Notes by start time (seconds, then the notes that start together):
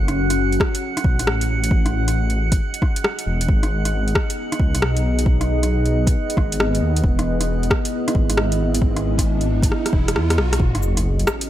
Already playing: F#1 C#4 F#4 A4 E5 F#5
0.08 cross-stick, closed hi-hat
0.30 cross-stick, closed hi-hat
0.45 G#4
0.52 closed hi-hat
0.60 kick, cross-stick
0.75 closed hi-hat
0.97 D#5, cross-stick, closed hi-hat
1.04 B1, kick
1.19 A1, cross-stick, closed hi-hat
1.27 cross-stick
1.41 closed hi-hat
1.64 closed hi-hat
1.71 kick
1.86 cross-stick, closed hi-hat
2.08 cross-stick, closed hi-hat
2.30 closed hi-hat
2.52 kick, closed hi-hat
2.74 closed hi-hat
2.82 kick, cross-stick
2.96 closed hi-hat
3.04 cross-stick
3.19 closed hi-hat
3.26 E1
3.41 closed hi-hat
3.48 G#1 B3, kick
3.63 cross-stick, closed hi-hat
3.79 D#4
3.85 cross-stick, closed hi-hat
4.08 closed hi-hat
4.15 kick, cross-stick
4.30 closed hi-hat
4.52 cross-stick, closed hi-hat
4.60 C#2, kick
4.75 B1, cross-stick, closed hi-hat
4.82 cross-stick
4.97 closed hi-hat
5.19 closed hi-hat
5.26 kick
5.41 cross-stick, closed hi-hat
5.63 cross-stick, closed hi-hat
5.86 closed hi-hat
6.07 kick, closed hi-hat
6.30 closed hi-hat
6.37 G#1, kick, cross-stick
6.52 closed hi-hat
6.60 cross-stick
6.75 closed hi-hat
6.82 D#2
6.97 closed hi-hat
7.04 E1, kick, riser
7.19 E4, cross-stick, closed hi-hat
7.41 cross-stick, closed hi-hat
7.63 closed hi-hat
7.70 kick, cross-stick
7.85 closed hi-hat
8.08 cross-stick, closed hi-hat
8.15 G#1, kick
8.29 G#1, cross-stick, closed hi-hat
8.37 cross-stick
8.52 closed hi-hat
8.74 closed hi-hat
8.82 kick
8.97 cross-stick, closed hi-hat
9.18 kick, cross-stick, closed hi-hat
9.41 closed hi-hat
9.63 kick, closed hi-hat
9.72 cross-stick
9.86 cross-stick, closed hi-hat
9.93 E1, kick
10.08 cross-stick, closed hi-hat
10.16 E2, cross-stick
10.30 cross-stick, closed hi-hat
10.38 B1, cross-stick
10.53 cross-stick, closed hi-hat
10.60 F#1 C#4, kick, sub drop
10.70 F#4
10.75 A4, cross-stick, closed hi-hat
10.83 cabasa
10.97 E5, cross-stick, closed hi-hat
11.19 closed hi-hat
11.27 cross-stick, cabasa
11.41 closed hi-hat